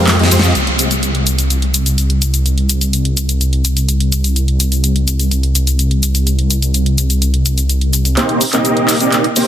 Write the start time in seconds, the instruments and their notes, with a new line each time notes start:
Already playing: detuned saw bass F2, supersaw synth G#3 C4 F4 G4 A#4
0.07 snare, clap, closed hi-hat, ride, shaker
0.19 detuned saw bass F2, supersaw synth G#3 C4 F4 G4 D#5, snare, closed hi-hat
0.31 detuned saw bass F2, supersaw synth G#3 C4 F4 G4 C5, open hi-hat, ride, shaker
0.39 detuned saw bass F2, supersaw synth G4, snare
0.43 supersaw synth G#3 C4 F4 D#5, closed hi-hat, shaker
0.55 detuned saw bass C2, closed hi-hat, shaker
0.67 closed hi-hat
0.79 closed hi-hat, shaker
0.91 closed hi-hat, shaker
1.03 closed hi-hat, shaker
1.15 closed hi-hat
1.27 closed hi-hat, shaker
1.39 closed hi-hat, shaker
1.50 closed hi-hat, shaker
1.62 closed hi-hat
1.74 closed hi-hat, shaker
1.86 closed hi-hat, shaker
1.98 closed hi-hat, shaker
2.10 closed hi-hat
2.22 closed hi-hat, shaker
2.34 closed hi-hat, shaker
2.46 closed hi-hat, shaker
2.58 closed hi-hat
2.69 closed hi-hat, shaker
2.81 closed hi-hat, shaker
2.93 closed hi-hat, shaker
3.05 closed hi-hat
3.17 closed hi-hat, shaker
3.29 closed hi-hat, shaker
3.41 closed hi-hat, shaker
3.53 closed hi-hat
3.65 closed hi-hat, shaker
3.77 closed hi-hat, shaker
3.89 closed hi-hat, shaker
4.00 closed hi-hat
4.12 closed hi-hat, shaker
4.24 closed hi-hat, shaker
4.36 closed hi-hat, shaker
4.48 closed hi-hat
4.60 closed hi-hat, shaker
4.72 closed hi-hat, shaker
4.84 closed hi-hat, shaker
4.96 closed hi-hat
5.08 closed hi-hat, shaker
5.20 closed hi-hat, shaker
5.31 closed hi-hat, shaker
5.43 closed hi-hat
5.55 closed hi-hat, shaker
5.67 closed hi-hat, shaker
5.79 closed hi-hat, shaker
5.91 closed hi-hat
6.03 closed hi-hat, shaker
6.15 closed hi-hat, shaker
6.27 closed hi-hat, shaker
6.39 closed hi-hat
6.50 closed hi-hat, shaker
6.62 closed hi-hat, shaker
6.74 closed hi-hat, shaker
6.86 closed hi-hat
6.98 closed hi-hat, shaker
7.10 closed hi-hat, shaker
7.22 closed hi-hat, shaker
7.34 closed hi-hat
7.46 closed hi-hat, shaker
7.58 closed hi-hat, shaker
7.69 closed hi-hat, shaker
7.81 closed hi-hat
7.93 closed hi-hat, shaker
8.05 closed hi-hat, shaker
8.17 supersaw synth A#3 C4 D#4 G4 C5, clap, closed hi-hat, shaker
8.29 closed hi-hat
8.41 open hi-hat, shaker
8.53 supersaw synth A#3 C4 D#4 G4 D#5, clap, closed hi-hat, shaker
8.65 closed hi-hat, shaker
8.77 closed hi-hat
8.89 clap, open hi-hat, shaker
9.00 supersaw synth A#3 C4 D#4 G4 D5, closed hi-hat, shaker
9.12 clap, closed hi-hat, shaker
9.24 closed hi-hat
9.36 supersaw synth A#3 C4 D#4 G4 C5, open hi-hat, shaker